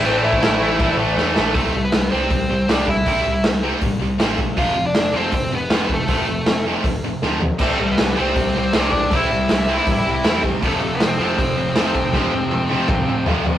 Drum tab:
CC |x---x---x-------|----------------|----------------|----------------|
HH |----------------|o---o---o---o---|o---o---o---o---|o---o---o---o---|
SD |----o-------o-o-|----o-------o---|----o-------o---|----o-------o---|
T1 |----------------|----------------|----------------|----------------|
T2 |----------------|----------------|----------------|----------------|
FT |----------------|----------------|----------------|----------------|
BD |---o----o-------|o-------o-----o-|o-------o-----o-|o-------o-----o-|

CC |----------------|x---------------|----------------|----------------|
HH |o---o---o-------|----o---o---o---|o---o---o---o---|o---o---o---o---|
SD |----o-------o---|----o-------o---|----o-------o---|----o-------o---|
T1 |----------------|----------------|----------------|----------------|
T2 |----------------|----------------|----------------|----------------|
FT |--------------o-|----------------|----------------|----------------|
BD |o-------o-------|o-------o-----o-|o-------o-----o-|o-------o-----o-|

CC |----------------|
HH |----------------|
SD |o---------------|
T1 |----o-o---------|
T2 |--------o-------|
FT |------------o-o-|
BD |o-------o-------|